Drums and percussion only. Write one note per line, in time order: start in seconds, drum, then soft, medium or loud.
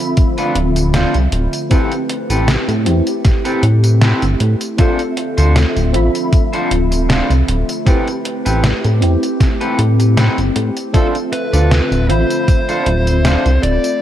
0.17 kick loud
0.17 closed hi-hat medium
0.17 tambourine soft
0.38 closed hi-hat soft
0.38 tambourine soft
0.55 closed hi-hat loud
0.76 closed hi-hat soft
0.76 tambourine medium
0.94 snare loud
0.94 closed hi-hat medium
0.94 tambourine soft
1.14 closed hi-hat soft
1.14 tambourine soft
1.32 closed hi-hat loud
1.53 closed hi-hat soft
1.53 tambourine medium
1.71 kick loud
1.71 closed hi-hat medium
1.71 tambourine soft
1.92 closed hi-hat soft
1.92 tambourine soft
2.09 closed hi-hat medium
2.30 closed hi-hat soft
2.30 tambourine medium
2.48 snare loud
2.48 closed hi-hat medium
2.48 tambourine soft
2.69 closed hi-hat soft
2.69 tambourine soft
2.86 closed hi-hat medium
3.07 closed hi-hat soft
3.07 tambourine medium
3.25 kick loud
3.25 snare medium
3.25 closed hi-hat medium
3.25 tambourine soft
3.45 closed hi-hat soft
3.45 tambourine soft
3.63 closed hi-hat medium
3.84 closed hi-hat soft
3.84 tambourine medium
4.02 snare loud
4.02 closed hi-hat medium
4.02 tambourine soft
4.22 closed hi-hat soft
4.22 tambourine soft
4.40 closed hi-hat loud
4.61 closed hi-hat soft
4.61 tambourine medium
4.78 kick loud
4.78 closed hi-hat medium
4.78 tambourine soft
4.99 closed hi-hat soft
4.99 tambourine soft
5.17 closed hi-hat medium
5.38 closed hi-hat soft
5.38 tambourine medium
5.56 snare loud
5.56 closed hi-hat medium
5.56 tambourine soft
5.77 closed hi-hat soft
5.77 tambourine soft
5.94 closed hi-hat medium
6.15 closed hi-hat soft
6.15 tambourine medium
6.33 kick loud
6.33 closed hi-hat medium
6.33 tambourine soft
6.53 closed hi-hat soft
6.53 tambourine soft
6.71 closed hi-hat loud
6.92 closed hi-hat soft
6.92 tambourine medium
7.10 snare loud
7.10 closed hi-hat medium
7.10 tambourine soft
7.31 closed hi-hat soft
7.31 tambourine soft
7.49 closed hi-hat loud
7.69 closed hi-hat soft
7.69 tambourine medium
7.87 kick loud
7.87 closed hi-hat medium
7.87 tambourine soft
8.08 closed hi-hat soft
8.08 tambourine soft
8.25 closed hi-hat medium
8.46 closed hi-hat soft
8.46 tambourine medium
8.64 snare loud
8.64 closed hi-hat medium
8.64 tambourine soft
8.84 closed hi-hat soft
8.84 tambourine soft
9.02 closed hi-hat medium
9.23 closed hi-hat soft
9.23 tambourine medium
9.40 kick loud
9.40 snare medium
9.40 closed hi-hat medium
9.40 tambourine soft
9.61 closed hi-hat soft
9.61 tambourine soft
9.79 closed hi-hat medium
10.00 closed hi-hat soft
10.00 tambourine medium
10.17 snare loud
10.17 closed hi-hat medium
10.17 tambourine soft
10.38 closed hi-hat soft
10.38 tambourine soft
10.56 closed hi-hat medium
10.77 closed hi-hat soft
10.77 tambourine medium
10.94 kick loud
10.94 closed hi-hat medium
10.94 tambourine soft
11.15 closed hi-hat soft
11.15 tambourine soft
11.33 closed hi-hat medium
11.53 closed hi-hat soft
11.53 tambourine medium
11.71 snare loud
11.71 closed hi-hat medium
11.71 tambourine soft
11.92 closed hi-hat soft
11.92 tambourine soft
12.10 closed hi-hat medium
12.30 closed hi-hat soft
12.30 tambourine medium
12.48 kick loud
12.48 closed hi-hat medium
12.48 tambourine soft
12.69 closed hi-hat soft
12.69 tambourine soft
12.86 closed hi-hat medium
13.07 closed hi-hat soft
13.07 tambourine medium
13.25 snare loud
13.25 closed hi-hat medium
13.25 tambourine soft
13.46 closed hi-hat soft
13.46 tambourine soft
13.63 closed hi-hat medium
13.84 closed hi-hat soft
13.84 tambourine medium